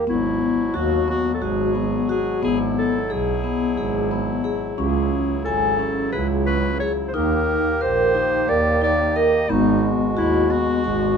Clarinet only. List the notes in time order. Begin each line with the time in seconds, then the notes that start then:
0.09 E4
0.76 F#4
1.10 F#4
1.34 A4
1.43 G#4
2.10 G#4
2.44 G#4
2.78 A4
3.12 G#4
4.79 G#4
5.45 A4
6.12 B4
6.47 B4
6.80 C#5
7.08 C5
7.14 A#4
7.82 C5
8.49 D5
8.83 D5
9.16 D#5
9.50 D#4
10.18 E4
10.51 F#4